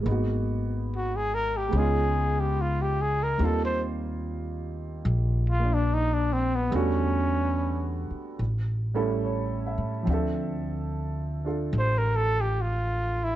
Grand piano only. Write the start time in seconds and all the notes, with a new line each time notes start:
0.00 G#3 A#3
0.06 B3 D#4
0.11 F#4
1.69 G#3 B3
1.74 C#4 D#4
1.79 F4
3.38 G3 A#3 C4 D#4
3.43 F4
5.60 A#3 D4
6.71 D3 G3 A3 B3
6.76 F#4
8.94 G3 A3 C#4 E4 A4
9.25 C#5
9.67 E5
10.03 F3 C4
10.08 D4 E5
10.14 A4
11.45 D4 F4 A4